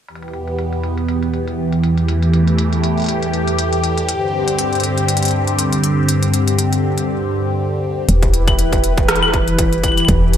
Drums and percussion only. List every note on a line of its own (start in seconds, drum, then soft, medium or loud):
0.09 closed hi-hat medium
0.15 closed hi-hat medium
0.23 closed hi-hat medium
0.28 closed hi-hat soft
0.34 closed hi-hat medium
0.48 closed hi-hat soft
0.59 closed hi-hat loud
0.73 closed hi-hat soft
0.84 closed hi-hat medium
0.98 closed hi-hat soft
1.09 closed hi-hat medium
1.23 closed hi-hat soft
1.34 closed hi-hat soft
1.48 closed hi-hat soft
1.73 closed hi-hat soft
1.84 closed hi-hat medium
1.98 closed hi-hat soft
2.08 closed hi-hat medium
2.23 closed hi-hat soft
2.34 closed hi-hat medium
2.48 closed hi-hat soft
2.58 closed hi-hat loud
2.73 closed hi-hat soft
2.84 closed hi-hat medium
2.98 closed hi-hat soft
3.00 closed hi-hat soft
3.02 closed hi-hat soft
3.04 closed hi-hat soft
3.06 closed hi-hat soft
3.09 closed hi-hat medium
3.23 closed hi-hat soft
3.34 closed hi-hat soft
3.48 closed hi-hat soft
3.59 closed hi-hat medium
3.73 closed hi-hat soft
3.84 closed hi-hat medium
3.98 closed hi-hat soft
4.09 closed hi-hat medium
4.48 closed hi-hat soft
4.59 closed hi-hat medium
4.73 closed hi-hat soft
4.75 closed hi-hat soft
4.80 closed hi-hat soft
4.84 closed hi-hat medium
4.98 closed hi-hat soft
5.08 closed hi-hat medium
5.17 closed hi-hat medium
5.23 closed hi-hat soft
5.25 closed hi-hat medium
5.28 closed hi-hat soft
5.31 closed hi-hat soft
5.47 closed hi-hat soft
5.59 closed hi-hat medium
5.73 closed hi-hat soft
5.84 closed hi-hat medium
6.09 closed hi-hat medium
6.23 closed hi-hat soft
6.34 closed hi-hat medium
6.48 closed hi-hat soft
6.59 closed hi-hat medium
6.73 closed hi-hat soft
6.98 closed hi-hat soft
8.09 closed hi-hat medium
8.23 kick loud
8.23 closed hi-hat soft
8.34 closed hi-hat medium
8.48 kick loud
8.48 closed hi-hat soft
8.48 claves medium
8.59 closed hi-hat medium
8.73 kick loud
8.73 closed hi-hat soft
8.84 closed hi-hat medium
8.98 kick loud
8.98 closed hi-hat soft
9.09 cross-stick loud
9.09 closed hi-hat medium
9.16 closed hi-hat soft
9.23 claves medium
9.34 kick loud
9.34 closed hi-hat soft
9.48 closed hi-hat soft
9.59 kick loud
9.59 closed hi-hat medium
9.73 closed hi-hat soft
9.84 kick loud
9.84 closed hi-hat medium
9.84 claves soft
9.88 claves soft
9.92 claves soft
9.98 closed hi-hat soft
9.98 claves soft
10.00 claves soft
10.05 kick loud
10.05 closed hi-hat medium
10.05 claves soft
10.34 closed hi-hat medium